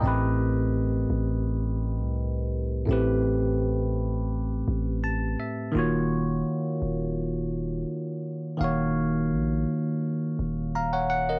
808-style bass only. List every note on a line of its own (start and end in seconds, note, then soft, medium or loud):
0.03 1.06 A1 loud
1.10 2.01 A1 loud
2.00 2.85 C2 loud
2.89 4.63 A1 loud
4.68 5.36 A1 loud
5.75 6.43 D#1 loud
6.82 7.85 D#1 loud
8.61 9.34 D#1 loud
9.32 9.66 A#1 loud
10.39 11.39 D#1 loud